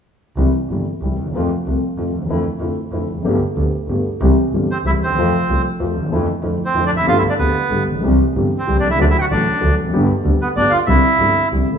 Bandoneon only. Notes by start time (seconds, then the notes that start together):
4.71 C4 C5
4.86 E4 E5
5.03 C4 C5
6.65 C4 C5
6.86 D4 D5
6.97 E4 E5
7.08 F4 F5
7.19 E4 E5
7.29 D4 D5
7.39 B3 B4
8.58 C4 C5
8.80 D4 D5
8.91 E4 E5
9.01 D4 D5
9.10 E4 E5
9.18 F#4 F#5 G5
9.31 D4 D5
10.42 B3 B4
10.56 D4 D5
10.70 F4 F5
10.86 E4 E5